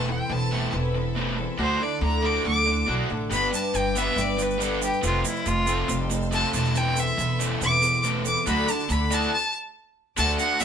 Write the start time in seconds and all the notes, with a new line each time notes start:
Already playing: E1 A4 E5 B5 C6
0.08 E2 E3 C4 E4 A4 G5
0.30 E1 E2 E3 B3 C4 E4 A4 A5
0.51 E2 E3 A3 C4 E4 A4
0.72 E1 E2 E3 B3 C4 E4 A4
0.94 E2 E3 C4 E4 A4
1.15 E2 E3 A3 B3 C4 E4 A4
1.37 E2 E3 C4 E4 A4
1.58 D2 D3 F#3 A3 D4 E4 F#4 A4 C5 F#5 D6
1.80 D3 A3 D4 E4 A4 D5
2.01 D2 D3 A3 D4 E4 A4 A#5
2.22 D3 A3 D4 E4 F#4 A4 D6
2.44 D2 D3 F#3 A3 D4 E4 A4 D6
2.66 D3 A3 D4 E4 A4
2.87 B1 D3 A3 D4 E4 F#4 A4
3.09 A1 D3 A3 D4 E4 A4
3.30 G1 G3 B3 D4 G4 B4 D5 G5 B5 D6, shaker
3.51 G3 D4 G4 B4, shaker
3.56 A5
3.73 G1 G3 B3 D4 G4 B4 G5, shaker
3.95 G3 B3 D4 G4 B4 E5, shaker
4.16 G1 G3 B3 D4 G4 B4, shaker
4.21 D5
4.38 G3 D4 G4 B4, shaker
4.42 B4
4.51 shaker
4.59 G3 B3 D4 G4 A4, shaker
4.63 B4
4.80 G3 D4 G4 B4, shaker
4.84 D4 G4
4.93 shaker
5.01 F1 F3 G3 A3 C4 G4 A4 F5 C6, shaker
5.05 F4
5.24 F3 A3 C4 E4 G4 A4, shaker
5.36 shaker
5.46 F1 F3 G3 A3 C4 F4 G4 A4, shaker
5.67 F3 A3 C4 G4 A4, shaker
5.71 C4
5.88 F1 F3 G3 A3 C4 G4 A4, shaker
6.10 F3 A3 C4 G4 A4, shaker
6.22 shaker
6.31 F3 G3 A3 C4 G4 A4 A5, shaker
6.53 E1 E2 E3 A3 C4 E4 A4 E5 A5 B5, shaker
6.65 shaker
6.74 E2 E3 A3 B3 C4 E4 A4 G5, shaker
6.96 E2 E3 C4 E4 A4 E5, shaker
7.07 shaker
7.17 E1 E2 E3 B3 C4 E4 A4, shaker
7.39 E2 E3 A3 C4 E4 A4, shaker
7.61 E1 E2 E3 B3 C4 E4 A4 D6, shaker
7.82 E2 E3 C4 E4 A4, shaker
8.03 E2 E3 A3 B3 C4 E4 A4, shaker
8.25 E2 E3 C4 E4 A4 D6, shaker
8.36 shaker
8.44 D2 D3 F#3 A3 D4 F#4 A5 D6, shaker
8.48 E4 A4 B5
8.68 D3 A3 D4 E4 A4 A5, shaker
8.79 shaker
8.89 D2 D3 A3 D4 E4 A4 B5, shaker
9.10 D3 A3 D4 E4 F#4 A4 A5, shaker
9.34 A5
10.17 D2 D3 A3 D4 F#4 A4 D5 A5 D6, shaker
10.38 A3 D4 F#4 A4 F#5, shaker
10.59 A1 D3 A3 D4 F#4 A4 E5, shaker